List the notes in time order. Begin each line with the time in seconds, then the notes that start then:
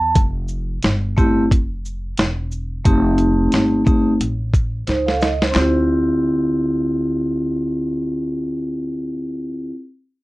Already playing: E2 A5
0.16 F1, kick, closed hi-hat
0.48 shaker
0.83 G1, snare, closed hi-hat
1.16 A3 C4 E4 G4, kick, shaker
1.51 F1, kick, closed hi-hat
1.85 shaker
2.18 E1, snare, closed hi-hat
2.52 shaker
2.85 F1 A3 C4 D#4 G4, kick, closed hi-hat
3.18 closed hi-hat, shaker
3.52 G1, snare, closed hi-hat
3.85 A3 C4 D#4 G4, kick, shaker
4.21 A1, closed hi-hat
4.54 kick, closed hi-hat, shaker
4.87 C#2 D#4 C5, snare, closed hi-hat
5.07 A4 F5, snare
5.21 D#5, snare, shaker
5.41 D#4 C5, snare
5.51 C4 E4, clap
5.56 D2 F4 G4, snare